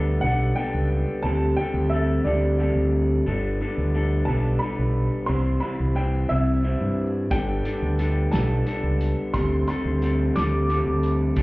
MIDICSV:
0, 0, Header, 1, 5, 480
1, 0, Start_track
1, 0, Key_signature, 1, "major"
1, 0, Tempo, 674916
1, 888, Time_signature, 6, 3, 24, 8
1, 8126, End_track
2, 0, Start_track
2, 0, Title_t, "Upright piano"
2, 0, Program_c, 0, 0
2, 149, Note_on_c, 0, 78, 86
2, 396, Note_on_c, 0, 79, 81
2, 406, Note_off_c, 0, 78, 0
2, 872, Note_on_c, 0, 81, 91
2, 896, Note_off_c, 0, 79, 0
2, 1102, Note_off_c, 0, 81, 0
2, 1113, Note_on_c, 0, 79, 82
2, 1349, Note_on_c, 0, 76, 75
2, 1367, Note_off_c, 0, 79, 0
2, 1596, Note_on_c, 0, 74, 76
2, 1604, Note_off_c, 0, 76, 0
2, 2111, Note_off_c, 0, 74, 0
2, 3024, Note_on_c, 0, 81, 81
2, 3263, Note_on_c, 0, 83, 76
2, 3281, Note_off_c, 0, 81, 0
2, 3743, Note_on_c, 0, 84, 88
2, 3767, Note_off_c, 0, 83, 0
2, 3984, Note_on_c, 0, 83, 76
2, 4000, Note_off_c, 0, 84, 0
2, 4238, Note_on_c, 0, 79, 72
2, 4241, Note_off_c, 0, 83, 0
2, 4474, Note_on_c, 0, 76, 88
2, 4487, Note_off_c, 0, 79, 0
2, 4990, Note_off_c, 0, 76, 0
2, 5199, Note_on_c, 0, 79, 87
2, 5893, Note_off_c, 0, 79, 0
2, 5913, Note_on_c, 0, 81, 80
2, 6640, Note_on_c, 0, 84, 96
2, 6661, Note_off_c, 0, 81, 0
2, 6873, Note_off_c, 0, 84, 0
2, 6883, Note_on_c, 0, 84, 91
2, 7365, Note_on_c, 0, 86, 101
2, 7380, Note_off_c, 0, 84, 0
2, 7879, Note_off_c, 0, 86, 0
2, 8126, End_track
3, 0, Start_track
3, 0, Title_t, "Clean electric guitar"
3, 0, Program_c, 1, 27
3, 0, Note_on_c, 1, 55, 73
3, 0, Note_on_c, 1, 59, 80
3, 0, Note_on_c, 1, 62, 76
3, 0, Note_on_c, 1, 69, 82
3, 165, Note_off_c, 1, 55, 0
3, 168, Note_off_c, 1, 59, 0
3, 168, Note_on_c, 1, 55, 81
3, 171, Note_off_c, 1, 62, 0
3, 174, Note_on_c, 1, 62, 88
3, 176, Note_off_c, 1, 69, 0
3, 176, Note_on_c, 1, 59, 83
3, 179, Note_on_c, 1, 69, 75
3, 406, Note_off_c, 1, 55, 0
3, 409, Note_off_c, 1, 59, 0
3, 409, Note_on_c, 1, 55, 82
3, 410, Note_off_c, 1, 62, 0
3, 412, Note_on_c, 1, 62, 85
3, 414, Note_off_c, 1, 69, 0
3, 417, Note_on_c, 1, 59, 91
3, 417, Note_on_c, 1, 69, 85
3, 877, Note_off_c, 1, 59, 0
3, 886, Note_on_c, 1, 50, 78
3, 889, Note_off_c, 1, 55, 0
3, 891, Note_off_c, 1, 62, 0
3, 892, Note_on_c, 1, 55, 74
3, 894, Note_on_c, 1, 60, 78
3, 896, Note_off_c, 1, 69, 0
3, 897, Note_on_c, 1, 67, 87
3, 899, Note_on_c, 1, 69, 80
3, 1117, Note_off_c, 1, 50, 0
3, 1123, Note_off_c, 1, 60, 0
3, 1126, Note_off_c, 1, 55, 0
3, 1126, Note_on_c, 1, 50, 80
3, 1129, Note_on_c, 1, 55, 77
3, 1131, Note_off_c, 1, 67, 0
3, 1131, Note_on_c, 1, 60, 80
3, 1133, Note_off_c, 1, 69, 0
3, 1134, Note_on_c, 1, 67, 84
3, 1136, Note_on_c, 1, 69, 94
3, 1359, Note_off_c, 1, 50, 0
3, 1365, Note_off_c, 1, 60, 0
3, 1367, Note_on_c, 1, 50, 79
3, 1369, Note_off_c, 1, 55, 0
3, 1371, Note_off_c, 1, 67, 0
3, 1371, Note_on_c, 1, 55, 75
3, 1374, Note_on_c, 1, 60, 89
3, 1374, Note_on_c, 1, 67, 78
3, 1376, Note_off_c, 1, 69, 0
3, 1379, Note_on_c, 1, 69, 91
3, 1593, Note_off_c, 1, 50, 0
3, 1600, Note_off_c, 1, 60, 0
3, 1602, Note_off_c, 1, 55, 0
3, 1602, Note_on_c, 1, 50, 81
3, 1605, Note_off_c, 1, 69, 0
3, 1605, Note_on_c, 1, 55, 81
3, 1608, Note_off_c, 1, 67, 0
3, 1609, Note_on_c, 1, 60, 89
3, 1611, Note_on_c, 1, 67, 92
3, 1614, Note_on_c, 1, 69, 92
3, 1831, Note_off_c, 1, 50, 0
3, 1840, Note_on_c, 1, 50, 75
3, 1841, Note_off_c, 1, 60, 0
3, 1842, Note_off_c, 1, 55, 0
3, 1845, Note_on_c, 1, 55, 71
3, 1846, Note_off_c, 1, 69, 0
3, 1847, Note_off_c, 1, 67, 0
3, 1850, Note_on_c, 1, 60, 90
3, 1850, Note_on_c, 1, 67, 78
3, 1855, Note_on_c, 1, 69, 82
3, 2307, Note_off_c, 1, 50, 0
3, 2312, Note_off_c, 1, 60, 0
3, 2315, Note_off_c, 1, 69, 0
3, 2317, Note_off_c, 1, 55, 0
3, 2320, Note_on_c, 1, 55, 91
3, 2323, Note_on_c, 1, 62, 80
3, 2325, Note_off_c, 1, 67, 0
3, 2327, Note_on_c, 1, 59, 82
3, 2330, Note_on_c, 1, 69, 97
3, 2560, Note_off_c, 1, 59, 0
3, 2561, Note_off_c, 1, 55, 0
3, 2561, Note_off_c, 1, 62, 0
3, 2564, Note_on_c, 1, 55, 77
3, 2565, Note_off_c, 1, 69, 0
3, 2569, Note_on_c, 1, 59, 75
3, 2569, Note_on_c, 1, 62, 84
3, 2573, Note_on_c, 1, 69, 82
3, 2800, Note_off_c, 1, 62, 0
3, 2802, Note_off_c, 1, 59, 0
3, 2803, Note_off_c, 1, 55, 0
3, 2805, Note_off_c, 1, 69, 0
3, 2806, Note_on_c, 1, 55, 92
3, 2809, Note_on_c, 1, 62, 96
3, 2811, Note_on_c, 1, 59, 84
3, 2814, Note_on_c, 1, 69, 90
3, 3039, Note_off_c, 1, 55, 0
3, 3039, Note_off_c, 1, 62, 0
3, 3042, Note_on_c, 1, 55, 89
3, 3043, Note_off_c, 1, 59, 0
3, 3043, Note_off_c, 1, 69, 0
3, 3047, Note_on_c, 1, 62, 75
3, 3052, Note_on_c, 1, 59, 88
3, 3052, Note_on_c, 1, 69, 88
3, 3280, Note_off_c, 1, 62, 0
3, 3281, Note_off_c, 1, 55, 0
3, 3282, Note_off_c, 1, 59, 0
3, 3284, Note_on_c, 1, 55, 79
3, 3285, Note_off_c, 1, 69, 0
3, 3289, Note_on_c, 1, 62, 76
3, 3290, Note_on_c, 1, 59, 78
3, 3293, Note_on_c, 1, 69, 76
3, 3751, Note_off_c, 1, 62, 0
3, 3752, Note_off_c, 1, 59, 0
3, 3753, Note_off_c, 1, 69, 0
3, 3753, Note_on_c, 1, 48, 80
3, 3755, Note_on_c, 1, 52, 81
3, 3758, Note_off_c, 1, 55, 0
3, 3761, Note_on_c, 1, 55, 90
3, 3761, Note_on_c, 1, 60, 84
3, 3765, Note_on_c, 1, 64, 88
3, 3767, Note_on_c, 1, 72, 84
3, 3983, Note_off_c, 1, 48, 0
3, 3985, Note_off_c, 1, 52, 0
3, 3991, Note_on_c, 1, 48, 80
3, 3992, Note_off_c, 1, 60, 0
3, 3994, Note_on_c, 1, 52, 82
3, 3996, Note_off_c, 1, 64, 0
3, 3997, Note_off_c, 1, 55, 0
3, 3997, Note_off_c, 1, 72, 0
3, 4000, Note_on_c, 1, 55, 84
3, 4001, Note_on_c, 1, 60, 84
3, 4005, Note_on_c, 1, 64, 88
3, 4005, Note_on_c, 1, 72, 80
3, 4226, Note_off_c, 1, 48, 0
3, 4230, Note_off_c, 1, 52, 0
3, 4234, Note_on_c, 1, 48, 81
3, 4235, Note_off_c, 1, 60, 0
3, 4236, Note_off_c, 1, 64, 0
3, 4238, Note_off_c, 1, 55, 0
3, 4238, Note_on_c, 1, 52, 76
3, 4241, Note_on_c, 1, 55, 83
3, 4242, Note_off_c, 1, 72, 0
3, 4244, Note_on_c, 1, 60, 80
3, 4245, Note_on_c, 1, 64, 83
3, 4251, Note_on_c, 1, 72, 83
3, 4464, Note_off_c, 1, 48, 0
3, 4471, Note_off_c, 1, 52, 0
3, 4472, Note_off_c, 1, 60, 0
3, 4473, Note_on_c, 1, 48, 88
3, 4475, Note_off_c, 1, 64, 0
3, 4477, Note_off_c, 1, 55, 0
3, 4478, Note_off_c, 1, 72, 0
3, 4479, Note_on_c, 1, 52, 84
3, 4480, Note_on_c, 1, 55, 91
3, 4481, Note_on_c, 1, 60, 100
3, 4483, Note_on_c, 1, 64, 88
3, 4487, Note_on_c, 1, 72, 81
3, 4707, Note_off_c, 1, 48, 0
3, 4710, Note_off_c, 1, 52, 0
3, 4716, Note_on_c, 1, 48, 82
3, 4717, Note_off_c, 1, 60, 0
3, 4717, Note_off_c, 1, 64, 0
3, 4718, Note_off_c, 1, 72, 0
3, 4718, Note_on_c, 1, 52, 73
3, 4719, Note_off_c, 1, 55, 0
3, 4722, Note_on_c, 1, 55, 80
3, 4725, Note_on_c, 1, 60, 83
3, 4726, Note_on_c, 1, 64, 84
3, 4727, Note_on_c, 1, 72, 83
3, 5185, Note_off_c, 1, 48, 0
3, 5186, Note_off_c, 1, 52, 0
3, 5190, Note_off_c, 1, 60, 0
3, 5190, Note_off_c, 1, 64, 0
3, 5190, Note_off_c, 1, 72, 0
3, 5193, Note_off_c, 1, 55, 0
3, 5196, Note_on_c, 1, 55, 83
3, 5200, Note_on_c, 1, 62, 78
3, 5201, Note_on_c, 1, 59, 82
3, 5206, Note_on_c, 1, 69, 92
3, 5437, Note_off_c, 1, 55, 0
3, 5438, Note_off_c, 1, 59, 0
3, 5439, Note_on_c, 1, 55, 69
3, 5442, Note_off_c, 1, 62, 0
3, 5445, Note_off_c, 1, 69, 0
3, 5445, Note_on_c, 1, 62, 76
3, 5447, Note_on_c, 1, 59, 77
3, 5448, Note_on_c, 1, 69, 83
3, 5677, Note_off_c, 1, 59, 0
3, 5679, Note_off_c, 1, 55, 0
3, 5682, Note_off_c, 1, 62, 0
3, 5682, Note_on_c, 1, 55, 81
3, 5685, Note_on_c, 1, 62, 84
3, 5686, Note_on_c, 1, 59, 82
3, 5687, Note_off_c, 1, 69, 0
3, 5690, Note_on_c, 1, 69, 88
3, 5918, Note_off_c, 1, 59, 0
3, 5919, Note_off_c, 1, 55, 0
3, 5920, Note_off_c, 1, 62, 0
3, 5922, Note_on_c, 1, 55, 91
3, 5923, Note_on_c, 1, 62, 90
3, 5926, Note_on_c, 1, 59, 77
3, 5927, Note_off_c, 1, 69, 0
3, 5930, Note_on_c, 1, 69, 92
3, 6158, Note_off_c, 1, 55, 0
3, 6160, Note_off_c, 1, 59, 0
3, 6161, Note_on_c, 1, 55, 86
3, 6163, Note_off_c, 1, 62, 0
3, 6166, Note_on_c, 1, 62, 88
3, 6168, Note_off_c, 1, 69, 0
3, 6169, Note_on_c, 1, 59, 86
3, 6171, Note_on_c, 1, 69, 98
3, 6633, Note_off_c, 1, 59, 0
3, 6642, Note_off_c, 1, 55, 0
3, 6642, Note_on_c, 1, 50, 78
3, 6644, Note_off_c, 1, 62, 0
3, 6645, Note_on_c, 1, 55, 93
3, 6647, Note_on_c, 1, 60, 93
3, 6649, Note_off_c, 1, 69, 0
3, 6650, Note_on_c, 1, 67, 84
3, 6652, Note_on_c, 1, 69, 96
3, 6878, Note_off_c, 1, 50, 0
3, 6885, Note_off_c, 1, 60, 0
3, 6887, Note_on_c, 1, 50, 81
3, 6889, Note_off_c, 1, 55, 0
3, 6892, Note_off_c, 1, 67, 0
3, 6892, Note_on_c, 1, 55, 78
3, 6894, Note_on_c, 1, 60, 73
3, 6894, Note_on_c, 1, 67, 75
3, 6896, Note_off_c, 1, 69, 0
3, 6898, Note_on_c, 1, 69, 98
3, 7117, Note_off_c, 1, 50, 0
3, 7124, Note_off_c, 1, 60, 0
3, 7125, Note_on_c, 1, 50, 81
3, 7128, Note_off_c, 1, 55, 0
3, 7131, Note_on_c, 1, 55, 74
3, 7132, Note_off_c, 1, 67, 0
3, 7132, Note_on_c, 1, 60, 86
3, 7135, Note_on_c, 1, 67, 81
3, 7136, Note_off_c, 1, 69, 0
3, 7139, Note_on_c, 1, 69, 85
3, 7358, Note_off_c, 1, 50, 0
3, 7365, Note_off_c, 1, 60, 0
3, 7367, Note_on_c, 1, 50, 83
3, 7368, Note_off_c, 1, 55, 0
3, 7371, Note_on_c, 1, 55, 91
3, 7372, Note_off_c, 1, 67, 0
3, 7372, Note_off_c, 1, 69, 0
3, 7373, Note_on_c, 1, 60, 91
3, 7375, Note_on_c, 1, 67, 88
3, 7380, Note_on_c, 1, 69, 97
3, 7595, Note_off_c, 1, 50, 0
3, 7603, Note_off_c, 1, 60, 0
3, 7604, Note_off_c, 1, 55, 0
3, 7604, Note_on_c, 1, 50, 80
3, 7607, Note_on_c, 1, 55, 82
3, 7608, Note_off_c, 1, 67, 0
3, 7608, Note_off_c, 1, 69, 0
3, 7611, Note_on_c, 1, 60, 81
3, 7611, Note_on_c, 1, 67, 83
3, 7616, Note_on_c, 1, 69, 82
3, 8072, Note_off_c, 1, 50, 0
3, 8076, Note_off_c, 1, 60, 0
3, 8079, Note_off_c, 1, 69, 0
3, 8083, Note_off_c, 1, 55, 0
3, 8086, Note_on_c, 1, 55, 91
3, 8087, Note_on_c, 1, 62, 91
3, 8090, Note_off_c, 1, 67, 0
3, 8092, Note_on_c, 1, 59, 88
3, 8093, Note_on_c, 1, 69, 90
3, 8126, Note_off_c, 1, 55, 0
3, 8126, Note_off_c, 1, 59, 0
3, 8126, Note_off_c, 1, 62, 0
3, 8126, Note_off_c, 1, 69, 0
3, 8126, End_track
4, 0, Start_track
4, 0, Title_t, "Fingered electric bass"
4, 0, Program_c, 2, 33
4, 0, Note_on_c, 2, 38, 89
4, 122, Note_off_c, 2, 38, 0
4, 162, Note_on_c, 2, 35, 76
4, 374, Note_off_c, 2, 35, 0
4, 529, Note_on_c, 2, 37, 66
4, 738, Note_off_c, 2, 37, 0
4, 883, Note_on_c, 2, 38, 79
4, 1094, Note_off_c, 2, 38, 0
4, 1236, Note_on_c, 2, 38, 89
4, 1555, Note_off_c, 2, 38, 0
4, 1602, Note_on_c, 2, 38, 79
4, 1917, Note_off_c, 2, 38, 0
4, 1960, Note_on_c, 2, 38, 79
4, 2276, Note_off_c, 2, 38, 0
4, 2324, Note_on_c, 2, 31, 85
4, 2533, Note_off_c, 2, 31, 0
4, 2687, Note_on_c, 2, 38, 89
4, 3000, Note_off_c, 2, 38, 0
4, 3046, Note_on_c, 2, 35, 80
4, 3254, Note_off_c, 2, 35, 0
4, 3407, Note_on_c, 2, 35, 72
4, 3615, Note_off_c, 2, 35, 0
4, 3764, Note_on_c, 2, 36, 84
4, 3973, Note_off_c, 2, 36, 0
4, 4126, Note_on_c, 2, 36, 92
4, 4439, Note_off_c, 2, 36, 0
4, 4487, Note_on_c, 2, 36, 83
4, 4799, Note_off_c, 2, 36, 0
4, 4843, Note_on_c, 2, 43, 71
4, 5158, Note_off_c, 2, 43, 0
4, 5200, Note_on_c, 2, 31, 85
4, 5411, Note_off_c, 2, 31, 0
4, 5564, Note_on_c, 2, 38, 88
4, 5878, Note_off_c, 2, 38, 0
4, 5928, Note_on_c, 2, 35, 78
4, 6136, Note_off_c, 2, 35, 0
4, 6284, Note_on_c, 2, 37, 72
4, 6494, Note_off_c, 2, 37, 0
4, 6647, Note_on_c, 2, 38, 84
4, 6856, Note_off_c, 2, 38, 0
4, 7008, Note_on_c, 2, 38, 93
4, 7322, Note_off_c, 2, 38, 0
4, 7372, Note_on_c, 2, 38, 77
4, 7685, Note_off_c, 2, 38, 0
4, 7726, Note_on_c, 2, 38, 82
4, 8042, Note_off_c, 2, 38, 0
4, 8085, Note_on_c, 2, 31, 80
4, 8126, Note_off_c, 2, 31, 0
4, 8126, End_track
5, 0, Start_track
5, 0, Title_t, "Drums"
5, 5198, Note_on_c, 9, 42, 85
5, 5200, Note_on_c, 9, 36, 107
5, 5270, Note_off_c, 9, 42, 0
5, 5271, Note_off_c, 9, 36, 0
5, 5442, Note_on_c, 9, 42, 58
5, 5514, Note_off_c, 9, 42, 0
5, 5682, Note_on_c, 9, 42, 62
5, 5754, Note_off_c, 9, 42, 0
5, 5921, Note_on_c, 9, 42, 78
5, 5929, Note_on_c, 9, 38, 91
5, 5992, Note_off_c, 9, 42, 0
5, 6001, Note_off_c, 9, 38, 0
5, 6163, Note_on_c, 9, 42, 57
5, 6234, Note_off_c, 9, 42, 0
5, 6406, Note_on_c, 9, 42, 64
5, 6477, Note_off_c, 9, 42, 0
5, 6644, Note_on_c, 9, 36, 101
5, 6645, Note_on_c, 9, 42, 82
5, 6715, Note_off_c, 9, 36, 0
5, 6716, Note_off_c, 9, 42, 0
5, 6881, Note_on_c, 9, 42, 57
5, 6952, Note_off_c, 9, 42, 0
5, 7127, Note_on_c, 9, 42, 55
5, 7198, Note_off_c, 9, 42, 0
5, 7367, Note_on_c, 9, 42, 71
5, 7376, Note_on_c, 9, 38, 90
5, 7438, Note_off_c, 9, 42, 0
5, 7447, Note_off_c, 9, 38, 0
5, 7608, Note_on_c, 9, 42, 47
5, 7680, Note_off_c, 9, 42, 0
5, 7845, Note_on_c, 9, 42, 52
5, 7917, Note_off_c, 9, 42, 0
5, 8081, Note_on_c, 9, 42, 77
5, 8084, Note_on_c, 9, 36, 105
5, 8126, Note_off_c, 9, 36, 0
5, 8126, Note_off_c, 9, 42, 0
5, 8126, End_track
0, 0, End_of_file